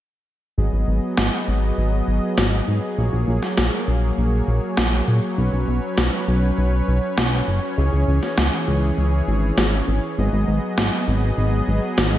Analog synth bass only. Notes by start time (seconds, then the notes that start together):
0.58 G#1
0.73 G#1
0.88 G#1
1.18 G#1
1.48 G#1
1.78 G#1
2.08 G#1
2.38 G#1
2.68 G#2
2.98 A#1
3.13 A#1
3.28 A#1
3.58 A#1
3.88 A#1
4.18 A#1
4.48 A#1
4.78 A#1
5.08 A#2
5.38 B1
5.53 B1
5.68 B1
5.98 B1
6.28 B1
6.58 B1
6.88 B1
7.18 B1
7.48 F#1
7.78 C#2
7.93 C#2
8.08 C#2
8.38 C#2
8.68 C#2
8.98 C#2
9.28 G#1
9.58 G#1
9.88 G#1
10.18 G#1
10.33 G#1
10.48 G#1
10.78 G#1
11.08 G#1
11.38 G#1
11.68 G#1
11.98 G#1